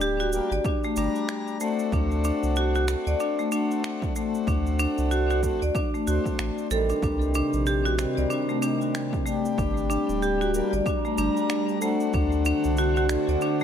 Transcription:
Already playing: D1 G3 D4 G4
0.01 G4, shaker
0.20 F#4, shaker
0.32 G3 A#3 D4 G4, shaker
0.51 G1 D5, shaker
0.65 D4, kick, shaker
0.84 A3, shaker
0.96 G1 G3 D4 A#5, shaker
1.15 shaker
1.29 finger snap, shaker
1.48 shaker
1.59 A3 C4 D4, shaker
1.63 F#4
1.79 shaker
1.92 D2 D4, kick, shaker
2.11 shaker
2.24 D4, shaker
2.43 C2, shaker
2.56 F#4, shaker
2.75 F#4, shaker
2.88 A3 C4 D4 F#4, finger snap, shaker
3.06 D2 D5, shaker
3.20 D4, shaker
3.39 A3, shaker
3.52 A3 C4 D4 F#4, shaker
3.71 shaker
3.84 finger snap, shaker
4.02 kick, shaker
4.14 A3 C4 D4 F#4, shaker
4.34 shaker
4.47 D2 D4, kick, shaker
4.66 shaker
4.79 D4, shaker
4.98 C2, shaker
5.11 F#4, shaker
5.30 F#4, shaker
5.42 A3 C4 D4 F#4, kick, shaker
5.62 D2 D5, shaker
5.75 D4, kick, shaker
5.94 A3, shaker
6.06 D2 A3 C4 D4 F#4 C5, shaker
6.25 kick, shaker
6.39 A1, finger snap, shaker
6.58 shaker
6.69 A1 D#3 G3 C4 A4, shaker
6.90 D4, shaker
7.02 C2 C3 D4, kick, shaker
7.22 shaker
7.34 D4, shaker
7.48 C4
7.53 A#1, shaker
7.66 G4, shaker
7.85 F#4, shaker
7.97 D#3 G3 C4, finger snap, shaker
8.17 C2 D5, shaker
8.30 D4, shaker
8.49 A3, shaker
8.61 D#3 G3 C4 D4, shaker
8.81 shaker
8.95 finger snap, shaker
9.13 kick, shaker
9.24 G3 A3 D4, shaker
9.28 G4
9.45 shaker
9.58 G1 G3 D4, kick, shaker
9.77 shaker
9.90 D4, shaker
10.09 D1, shaker
10.15 D4
10.22 G4, shaker
10.41 F#4, shaker
10.53 G3 A#3 D4 G4, shaker
10.73 G1 D5 A#5, shaker
10.86 D4, kick, shaker
11.05 A3, shaker
11.17 G1 G3 D4 A#5, shaker
11.37 shaker
11.50 finger snap, shaker
11.69 shaker
11.80 A3 C4 D4 F#4, shaker
12.00 shaker
12.13 D2 D3 D4, kick, shaker
12.32 shaker
12.45 D4 F#5, shaker
12.64 C2, shaker
12.77 F#4, shaker
12.85 C5
12.96 F#4, shaker
13.09 A3 C4 D4 F#4, finger snap, shaker
13.28 D2 D5, shaker
13.41 D4, shaker
13.60 shaker

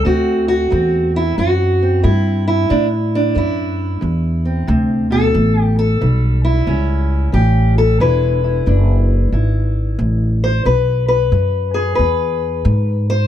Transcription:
0.05 D2 D3 A3 C4 F#4
0.48 F#4
0.70 E2 A3 C4
1.16 E4
1.38 F#2 A2 F#4
1.82 C4
2.03 G2 A3 E4
2.48 E4
2.69 A2 D3 D4
3.15 D4
3.35 F#2 A3 E4
4.01 E2 A2
4.45 C4
4.67 D2 C3
5.11 B2 A4
5.34 A1 A2
5.62 G4
5.79 A4
6.01 B1 E3 G3
6.45 E4
6.67 C#2 E2 C#4
7.32 A1 E3 G4
7.78 A4
8.00 E1 E2 G#3 D4 E4 B4
8.44 E4
8.66 F#1 G#3 D4
9.32 G#1 E2 E4
9.99 A1 G#3
10.44 C5
10.65 B1 E2 B4
11.08 B4
11.32 F#2 G#3
11.74 G#4
11.95 E2 B4
11.99 E2
12.65 G#2 G#3
13.10 C5

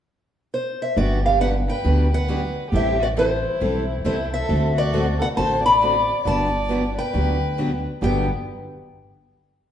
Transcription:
0.54 C5
0.82 E5
0.96 G1 D3 F#3 B3 D4 F#4 G4 D5
1.24 G4 F5
1.40 D3 F#3 B3 D4 G4 B4 F#5
1.68 B4 G5
1.84 D2 D3 F#3 B3 D4 G4
2.13 B4 F#5
2.28 D3 F#3 B3 D4 G4
2.71 A1 E3 G3 C4 E4 G4 A4
2.76 E5
3.00 F#4 D5
3.17 E3 G3 C4 E4 A4 C5
3.60 B1 E3 G3 C4 E4 A4
4.04 C2 E3 G3 C4 E4 A4 C5
4.33 A4 E5
4.49 D2 D3 A3 C4 F#4 A4
4.76 F#4 D5
4.94 D3 A3 C4 F#4 A4
5.19 A4 F#5
5.36 A1 D3 A3 C4 F#4 A4 C5 A5
5.64 D5 B5
5.82 D3 A3 C4 F#4 A4
6.24 G1 D3 F#3 B3 D4 G4 D5 A5
6.70 D3 F#3 B3 D4 G4
6.98 B4 G5
7.14 D2 D3 F#3 B3 D4 G4
7.58 D3 F#3 B3 D4 G4
8.02 G1 G2 D3 F#3 B3 D4 G4 G5

